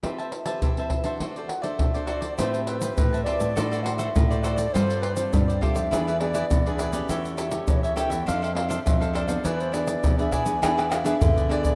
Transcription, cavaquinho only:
\new Staff \with { instrumentName = "Cavaquinho" } { \time 4/4 \key a \minor \tempo 4 = 102 <g' c'' e'' a''>16 <c'' e'' a''>16 r16 <c'' e'' a''>16 <g' c'' e'' a''>16 <c'' e'' a''>8 <c'' e'' a''>16 <fis' a' c'' d''>16 <a' c'' d''>16 r16 <a' c'' d''>8 <a' c'' d''>16 <fis' a' c'' d''>16 <a' c'' d''>16 | <g' c'' e'' a''>8 <g' c'' e'' a''>8. <c'' e'' a''>16 <g' c'' e'' a''>16 <c'' e'' a''>16 <fis' a' c'' d''>16 <fis' a' c'' d''>16 <fis' a' c'' d''>16 <fis' a' c'' d''>16 r16 <a' c'' d''>16 <fis' a' c'' d''>16 <a' c'' d''>16 | <f' g' c'' d''>8 <f' g' c'' d''>8. <g' c'' d''>16 <f' g' c'' d''>16 <g' c'' d''>16 <e' gis' b' d''>16 <e' gis' b' d''>16 <e' gis' b' d''>16 <e' gis' b' d''>16 r16 <gis' b' d''>16 <e' gis' b' d''>16 <gis' b' d''>16 | <g' a' cis'' e''>8 <g' a' cis'' e''>8. <a' cis'' e''>16 <g' a' cis'' e''>16 <a' cis'' e''>16 <d' a' c'' f''>16 <d' a' c'' f''>16 <d' a' c'' f''>16 <d' a' c'' f''>16 r16 <a' c'' f''>16 <d' a' c'' f''>16 <a' c'' f''>16 |
<e' gis' b' d''>8 <e' gis' b' d''>8. <gis' b' d''>16 <e' gis' b' d''>16 <gis' b' d''>16 <e' gis' b' d''>16 <e' gis' b' d''>16 <e' gis' b' d''>16 <e' gis' b' d''>16 r16 <gis' b' d''>16 <e' gis' b' d''>16 <gis' b' d''>16 | }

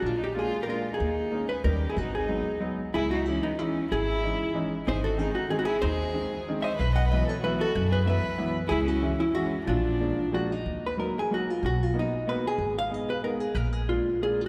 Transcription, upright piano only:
\new Staff \with { instrumentName = "Upright piano" } { \time 3/4 \key gis \minor \tempo 4 = 186 r4 <gis ais d' eis'>8 r8 <gis ais d' eis'>8 r8 | r4 <gis ais cis' dis'>8 r8 <g ais cis' dis'>8 r8 | r4 <fis gis b dis'>8 r8 <fis gis b dis'>8 r8 | \key cis \minor r4 <e gis cis' dis'>8 r8 <e gis cis' dis'>8 r8 |
r4 <e gis cis' dis'>8 r8 <e gis cis' dis'>8 r8 | r4 <dis gis bis dis'>8 r8 <dis gis bis dis'>8 r8 | r4 <dis gis bis dis'>8 r8 <dis gis bis dis'>8 r8 | r4 <e fis b e'>8 r8 <e fis b e'>8 r8 |
r4 <e fis b e'>8 r8 <e fis b e'>8 r8 | r4 <e gis cis' e'>8 r8 <e gis cis' e'>8 r8 | r4 <eis gis ais d'>8 r8 <eis gis ais d'>8 r8 | \key ees \minor r4 <ges bes ees' ges'>8 r8 <ges bes ees' ges'>8 r8 |
r4 <ais b dis' fis'>8 r8 <ais b dis' fis'>8 r8 | r4 <aes ces' ees' aes'>8 r8 <aes ces' ees' aes'>8 r8 | r4 <aes bes d' f'>8 r8 <aes bes d' f'>8 r8 | }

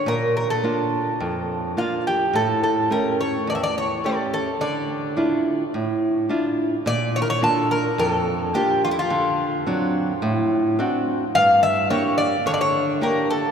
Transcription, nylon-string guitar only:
\new Staff \with { instrumentName = "Nylon-string guitar" } { \time 4/4 \key d \minor \tempo 4 = 106 bes,4 <bes d' f'>4 f,4 <bes d' f'>4 | a,4 <a cis' g'>4 e,4 <a cis' g'>4 | d4 <d' e' f'>4 a,4 <d' e' f'>4 | bes,4 <bes d' f'>4 f,4 <bes d' f'>4 |
d4 <fis c' d'>4 a,4 <c' d' fis'>4 | g,4 <bes d' g'>4 d4 <bes d' g'>4 | }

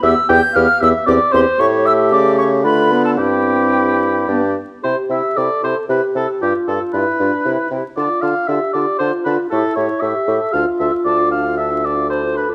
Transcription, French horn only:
\new Staff \with { instrumentName = "French horn" } { \time 3/4 \key c \major \tempo 4 = 115 b8 b8 b8 b8 c'8 c'8 | a2 a8 b8 | c'2 b8 r8 | g'4 a'4 g'4 |
f'4 e'8 d'8 e'8 g'8 | f'4 g'4 f'4 | e'4 g'8 a'8 f'4~ | f'4. r8 a'4 | }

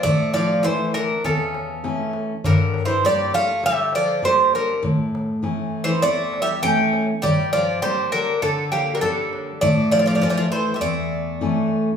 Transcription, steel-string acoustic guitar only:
\new Staff \with { instrumentName = "Steel-string acoustic guitar" } { \clef bass \time 4/4 \key a \phrygian \tempo 4 = 100 a,4 <e a cis'>4 e,4 <e a cis'>4 | g,4 <g bes d'>4 d4 <g bes d'>4 | a,4 <e a cis'>4 e,4 <e a cis'>4 | g,4 <g bes d'>4 d4 <g bes d'>4 |
a,4 <e a cis'>4 e,4 <e a cis'>4 | }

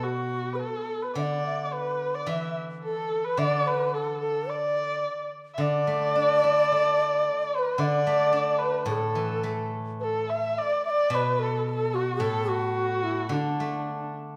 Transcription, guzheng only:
\new Staff \with { instrumentName = "Guzheng" } { \clef bass \time 2/4 \tempo 4 = 109 b,4 r4 | d2 | e2 | d2~ |
d4 r4 | d8 a8 d'8 e'8 | a'2 | d8 a8 d'4 |
a,8 e8 a4~ | a4 r4 | b,2 | a,2 |
d8 a4. | }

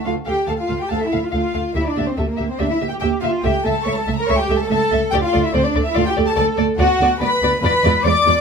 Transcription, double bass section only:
\new Staff \with { instrumentName = "Double bass section" } { \clef bass \time 4/4 \key d \minor \tempo 4 = 143 d,8 d,8 d,8 d,8 d,8 d,8 d,8 d,8 | d,8 d,8 d,8 d,8 d,8 d,8 d,8 d,8 | cis,8 cis,8 cis,8 cis,8 cis,8 cis,8 cis,8 cis,8 | d,8 d,8 d,8 d,8 d,8 d,8 d,8 d,8 |
\key b \dorian d,8 d,8 d,8 d,8 e,8 e,8 e,8 e,8 | }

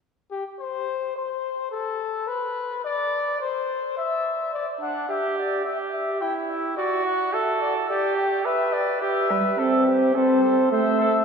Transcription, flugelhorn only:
\new Staff \with { instrumentName = "Flugelhorn" } { \time 4/4 \key g \mixolydian \tempo 4 = 107 r1 | r1 | r8 d'8 g'4 g'4 e'4 | fis'4 a'4 g'4 b'4 |
g'8 b'8 a'8 g'8 a'8 a'8 c''8 a'8 | }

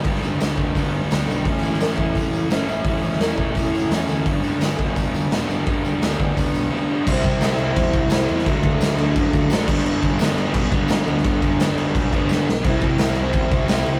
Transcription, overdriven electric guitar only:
\new Staff \with { instrumentName = "Overdriven electric guitar" } { \time 4/4 \key g \lydian \tempo 4 = 172 <g, d g b d'>8 <g b d'>8 <g, d g b d'>8 <g b d'>4. <d g b d'>8 <g b d'>8 | <a, e a cis' e'>8 <a cis' e'>8 <a, e a cis' e'>8 <a cis' e'>4. <e a cis' e'>8 <a cis' e'>8 | <a, e a cis' e'>8 <a cis' e'>8 <a, e a cis' e'>8 <a cis' e'>4. <e a cis' e'>8 <a cis' e'>8 | <g, d g b d'>8 <g b d'>8 <g, d g b d'>8 <g b d'>4. <d g b d'>8 <g b d'>8 |
<g, d g b d'>8 <g b d'>8 <g, d g b d'>8 <g b d'>4. <d g b d'>8 <g b d'>8 | <c g c' e'>4. <c g c' e'>4. <c g c' e'>4 | <d fis a d'>4. <d fis a d'>4. <d fis a d'>8 <g, d g b d'>8~ | <g, d g b d'>4 <g, d g b d'>4. <g, d g b d'>4 <g, d g b d'>8~ |
<g, d g b d'>4 <g, d g b d'>4. <g, d g b d'>4 r8 | <c g c' e'>4. <c g c' e'>4. <c g c' e'>4 | }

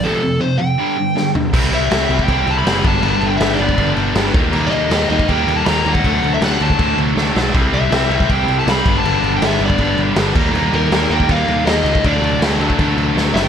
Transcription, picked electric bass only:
\new Staff \with { instrumentName = "Picked electric bass" } { \clef bass \time 4/4 \key f \lydian \tempo 4 = 160 r1 | \key c \lydian c,8 c,8 c,8 c,8 c,8 c,8 fis,,8 g,,8 | g,,8 g,,8 g,,8 g,,8 g,,8 g,,8 g,,8 ees,8 | ees,8 ees,8 ees,8 ees,8 ees,8 ees,8 ees,8 ees,8 |
d,8 d,8 d,8 d,8 d,8 d,8 d,8 b,,8 | c,8 c,8 c,8 c,8 c,8 c,8 c,8 g,,8 | g,,8 g,,8 g,,8 g,,8 g,,8 g,,8 g,,8 ees,8 | ees,8 ees,8 ees,8 ees,8 ees,8 ees,8 ees,8 cis,8 |
d,8 d,8 d,8 d,8 d,8 d,8 d,8 fis,,8 | }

